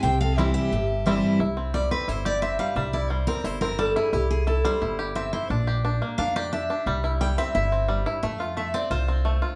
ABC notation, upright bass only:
X:1
M:4/4
L:1/8
Q:1/4=176
K:C
V:1 name="Upright bass" clef=bass
C,,4 G,,,4 | [K:Cmix] C,,4 G,,,4 | C,,4 G,,,4 | C,,4 G,,,4 |
B,,,4 F,,4 | C,,4 G,,,4 | F,,4 C,,4 |]